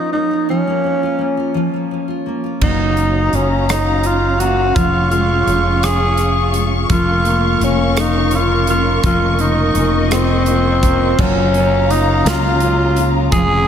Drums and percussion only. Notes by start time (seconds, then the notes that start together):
2.61 kick, crash
2.97 closed hi-hat
3.33 closed hi-hat
3.69 cross-stick, closed hi-hat
4.04 closed hi-hat
4.40 closed hi-hat
4.76 kick, closed hi-hat
5.11 closed hi-hat
5.48 closed hi-hat
5.83 cross-stick, closed hi-hat
6.18 cross-stick, closed hi-hat
6.54 closed hi-hat
6.90 kick, closed hi-hat
7.25 closed hi-hat
7.61 closed hi-hat
7.97 cross-stick, closed hi-hat
8.31 closed hi-hat
8.67 closed hi-hat
9.03 kick, closed hi-hat
9.39 closed hi-hat
9.75 closed hi-hat
10.11 cross-stick, closed hi-hat
10.46 closed hi-hat
10.83 kick, closed hi-hat
11.19 kick, crash
11.54 closed hi-hat
11.90 closed hi-hat
12.26 snare, closed hi-hat
12.60 closed hi-hat
12.96 closed hi-hat
13.32 kick, closed hi-hat